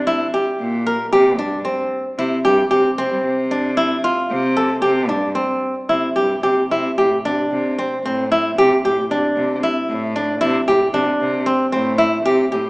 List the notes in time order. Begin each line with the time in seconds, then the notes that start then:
Already playing: C3
0.07 E4
0.34 G4
0.60 A#2
0.87 A#4
1.13 C3 G4
1.39 G2 D4
1.65 C4
2.18 C3 E4
2.44 G2 G4
2.71 C3 G4
2.98 C3 C4
3.11 G3
3.25 C3
3.51 D4
3.77 E4
4.04 F4
4.31 C3
4.57 A4
4.82 C3 G4
5.09 G2 D4
5.35 C4
5.89 C3 E4
6.16 G2 G4
6.43 C3 G4
6.71 C3 E4
6.98 A2 G4
7.25 C3 D4
7.52 C3
7.78 C4
8.05 A2 C4
8.32 E4
8.57 C3 G4
8.84 A2 G4
9.10 C3 D4
9.36 C3
9.63 E4
9.89 A2
10.16 D4
10.41 C3 E4
10.67 A2 G4
10.93 C3 D4
11.20 C3
11.46 C4
11.72 A2 C4
11.98 E4
12.25 C3 G4
12.52 A2 G4